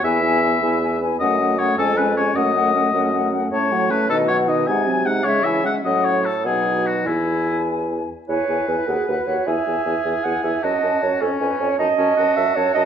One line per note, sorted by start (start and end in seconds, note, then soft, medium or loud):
0.04 0.55 E2 medium
0.04 0.23 B3 soft
0.04 0.23 E4 soft
0.04 0.99 E5 medium
0.04 0.23 G#5 soft
0.23 0.43 B3 soft
0.23 0.42 E4 soft
0.23 0.43 G#5 soft
0.43 0.62 B3 soft
0.43 0.61 E4 soft
0.43 0.62 G#5 soft
0.62 1.14 E2 medium
0.62 0.82 B3 soft
0.62 0.81 E4 soft
0.62 0.82 G#5 soft
0.82 1.01 B3 soft
0.82 1.01 E4 soft
0.82 1.01 G#5 soft
1.01 1.21 B3 soft
1.01 1.20 E4 soft
1.01 1.21 G#5 soft
1.20 1.71 F#2 medium
1.20 1.40 A3 soft
1.20 1.39 C#4 soft
1.20 1.60 D#5 medium
1.20 1.39 F#5 soft
1.39 1.58 A3 soft
1.39 1.58 C#4 soft
1.39 1.58 F#5 soft
1.58 1.77 A3 soft
1.58 1.78 C#4 soft
1.58 1.77 C#5 medium
1.58 1.77 F#5 soft
1.78 2.29 F2 medium
1.78 1.97 G#3 soft
1.78 1.97 C#4 soft
1.78 1.98 A4 medium
1.78 1.97 G#5 soft
1.97 2.16 G#3 soft
1.97 2.16 C#4 soft
1.97 2.16 B4 medium
1.97 2.16 G#5 soft
2.17 2.35 G#3 soft
2.17 2.35 C#4 soft
2.17 2.37 C#5 medium
2.17 2.36 G#5 soft
2.35 2.87 F#2 medium
2.35 2.55 A3 soft
2.35 2.54 C#4 soft
2.35 3.32 D#5 medium
2.35 2.54 F#5 soft
2.55 2.74 A3 soft
2.55 2.73 C#4 soft
2.55 2.74 F#5 soft
2.74 2.94 A3 soft
2.74 2.93 C#4 soft
2.74 2.93 F#5 soft
2.93 3.45 F#2 medium
2.93 3.13 A3 soft
2.93 3.12 C#4 soft
2.93 3.12 F#5 soft
3.12 3.32 A3 soft
3.12 3.31 C#4 soft
3.12 3.31 F#5 soft
3.32 3.51 A3 soft
3.32 3.51 C#4 soft
3.32 3.51 F#5 soft
3.51 4.11 A2 medium
3.51 3.74 A3 soft
3.51 3.73 C#4 soft
3.51 3.92 C#5 medium
3.51 3.74 A5 soft
3.71 3.92 F#3 soft
3.71 3.92 A3 soft
3.71 3.92 F#5 soft
3.90 4.09 A3 soft
3.90 4.09 C#4 soft
3.90 4.09 B4 medium
3.90 4.09 A5 soft
4.09 4.69 B2 medium
4.09 4.30 D#3 soft
4.09 4.31 D#4 soft
4.09 4.18 A4 medium
4.09 4.31 D#5 soft
4.28 4.50 F#3 soft
4.28 4.49 F#4 soft
4.28 4.37 C#5 medium
4.28 4.51 F#5 soft
4.48 4.67 D#3 soft
4.48 4.67 D#4 soft
4.48 4.68 D#5 medium
4.48 4.67 D#5 soft
4.67 5.27 C3 medium
4.67 4.89 G#3 soft
4.67 4.89 D#4 soft
4.67 4.89 F#5 soft
4.67 5.07 G#5 medium
4.87 5.07 F#3 soft
4.87 5.08 C4 soft
4.87 5.08 G#5 soft
5.06 5.24 G#3 soft
5.06 5.25 D#4 soft
5.06 5.26 F#5 medium
5.06 5.26 F#5 soft
5.24 5.69 C#3 medium
5.24 5.46 G#3 soft
5.24 5.46 C#4 soft
5.24 5.45 C#5 medium
5.24 5.47 E5 soft
5.44 5.67 E3 soft
5.44 5.66 E4 soft
5.44 5.64 E5 medium
5.44 5.67 G#5 soft
5.64 5.83 G#3 soft
5.64 5.84 C#4 soft
5.64 5.84 E5 soft
5.64 5.74 F#5 medium
5.83 6.46 A2 medium
5.83 6.27 F#3 soft
5.83 6.28 C#4 soft
5.83 6.06 D#5 medium
5.83 6.18 F#5 soft
6.04 6.26 C#5 medium
6.25 6.45 A4 medium
6.44 7.08 B2 soft
6.44 7.07 F#3 soft
6.44 7.07 D#4 soft
6.44 6.88 G#4 medium
6.44 7.07 F#5 soft
6.87 7.08 F#4 soft
7.05 8.09 E2 soft
7.05 8.09 E3 soft
7.05 8.09 E4 soft
7.05 7.68 E4 soft
7.05 8.09 G#5 soft
8.28 8.38 E2 soft
8.28 8.47 E4 soft
8.28 9.43 B4 soft
8.28 8.70 C#5 medium
8.28 8.48 G#5 soft
8.48 8.58 E2 soft
8.48 8.68 E4 soft
8.48 8.68 G#5 soft
8.68 8.77 E2 soft
8.68 8.87 E4 soft
8.68 8.89 B4 soft
8.68 8.88 G#5 soft
8.87 8.97 D#2 soft
8.87 9.07 F#4 soft
8.87 9.07 G#4 medium
8.87 9.07 F#5 soft
9.07 9.17 D#2 soft
9.07 9.26 F#4 soft
9.07 9.28 B4 soft
9.07 9.26 F#5 soft
9.27 9.36 D#2 soft
9.27 9.45 F#4 soft
9.27 9.48 C#5 soft
9.27 9.46 F#5 soft
9.46 9.56 E2 soft
9.46 9.66 E4 soft
9.46 10.65 G#4 soft
9.46 10.26 E5 medium
9.46 9.65 G#5 soft
9.66 9.76 E2 soft
9.66 9.85 E4 soft
9.66 9.84 G#5 soft
9.85 9.95 E2 soft
9.85 10.04 E4 soft
9.85 10.04 G#5 soft
10.04 10.14 E2 soft
10.04 10.24 E4 soft
10.04 10.22 G#5 soft
10.23 10.34 E2 soft
10.23 10.44 E4 soft
10.23 10.43 F#5 medium
10.23 10.42 G#5 soft
10.42 10.53 E2 soft
10.42 10.64 E4 soft
10.42 10.63 E5 medium
10.42 10.62 G#5 soft
10.63 10.72 F#2 soft
10.63 10.83 C#4 soft
10.63 11.23 F#4 soft
10.63 11.04 D#5 medium
10.63 10.82 A5 soft
10.82 10.92 F#2 soft
10.82 11.02 C#4 soft
10.82 11.01 A5 soft
11.01 11.11 F#2 soft
11.01 11.21 C#4 soft
11.01 11.21 C#5 medium
11.01 11.20 A5 soft
11.20 11.30 F2 soft
11.20 11.78 C#4 soft
11.20 11.41 C#4 soft
11.20 11.30 A4 medium
11.20 11.39 G#5 soft
11.40 11.49 F2 soft
11.40 11.59 C#4 soft
11.40 11.62 B4 soft
11.40 11.59 G#5 soft
11.59 11.69 F2 soft
11.59 11.78 C#4 soft
11.59 11.78 C#5 medium
11.59 11.78 G#5 soft
11.78 11.88 F#2 soft
11.78 11.98 C#4 soft
11.78 11.87 D#4 soft
11.78 12.35 D#5 medium
11.78 11.97 A5 soft
11.97 12.07 F#2 soft
11.97 12.16 C#4 soft
11.97 12.17 A5 soft
12.17 12.27 F#2 soft
12.17 12.36 C#4 soft
12.17 12.85 F#4 medium
12.17 12.37 A5 soft
12.36 12.46 F#2 medium
12.36 12.56 C#4 soft
12.36 12.57 E5 medium
12.36 12.56 A5 soft
12.56 12.65 F#2 medium
12.56 12.74 C#4 soft
12.56 12.74 C#5 medium
12.56 12.75 A5 soft
12.74 12.84 F#2 medium
12.74 12.85 C#4 soft
12.74 12.83 D#5 medium
12.74 12.85 A5 soft